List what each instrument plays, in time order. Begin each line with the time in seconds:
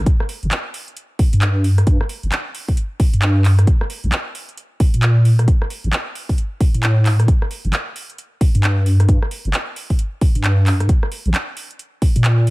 0.06 kick, closed hi-hat
0.20 cross-stick
0.29 open hi-hat
0.43 wobble bass G1, closed hi-hat
0.51 clap, closed hi-hat
0.74 open hi-hat
0.88 closed hi-hat
0.97 closed hi-hat
1.19 kick, open hi-hat
1.33 wobble bass G2, closed hi-hat
1.42 clap, closed hi-hat
1.64 open hi-hat
1.78 cross-stick, closed hi-hat
1.87 kick, closed hi-hat
2.01 cross-stick
2.09 open hi-hat
2.23 wobble bass G1, closed hi-hat
2.32 clap, closed hi-hat
2.55 open hi-hat
2.68 kick, open hi-hat
2.77 closed hi-hat
3.00 kick, open hi-hat
3.13 wobble bass G2, closed hi-hat
3.22 clap, closed hi-hat
3.45 clap, open hi-hat
3.59 cross-stick, closed hi-hat
3.67 kick, closed hi-hat
3.81 cross-stick
3.90 open hi-hat
4.04 wobble bass A#1, closed hi-hat
4.12 clap, closed hi-hat
4.35 open hi-hat
4.49 closed hi-hat
4.57 closed hi-hat
4.80 kick, open hi-hat
4.94 wobble bass A#2, closed hi-hat
5.03 clap, closed hi-hat
5.25 open hi-hat
5.39 cross-stick, closed hi-hat
5.48 kick, closed hi-hat
5.62 cross-stick
5.70 open hi-hat
5.84 wobble bass A1, closed hi-hat
5.93 clap, closed hi-hat
6.15 open hi-hat
6.29 kick, open hi-hat
6.38 closed hi-hat
6.61 kick, open hi-hat
6.74 wobble bass A2, closed hi-hat
6.83 clap, closed hi-hat
7.06 clap, open hi-hat
7.20 cross-stick, closed hi-hat
7.28 kick, closed hi-hat
7.42 cross-stick
7.51 open hi-hat
7.65 wobble bass G1, closed hi-hat
7.73 clap, closed hi-hat
7.96 open hi-hat
8.10 closed hi-hat
8.18 closed hi-hat
8.41 kick, open hi-hat
8.55 wobble bass G2, closed hi-hat
8.64 clap, closed hi-hat
8.86 open hi-hat
9.00 cross-stick, closed hi-hat
9.09 kick, closed hi-hat
9.22 cross-stick
9.31 open hi-hat
9.45 wobble bass G1, closed hi-hat
9.54 clap, closed hi-hat
9.76 open hi-hat
9.90 kick, open hi-hat
9.99 closed hi-hat
10.21 kick, open hi-hat
10.35 wobble bass G2, closed hi-hat
10.44 clap, closed hi-hat
10.67 clap, open hi-hat
10.80 cross-stick, closed hi-hat
10.89 kick, closed hi-hat
11.03 cross-stick
11.12 open hi-hat
11.25 wobble bass A#1, closed hi-hat
11.34 clap, closed hi-hat
11.57 open hi-hat
11.71 closed hi-hat
11.79 closed hi-hat
12.02 kick, open hi-hat
12.16 wobble bass A#2, closed hi-hat
12.24 clap, closed hi-hat
12.47 open hi-hat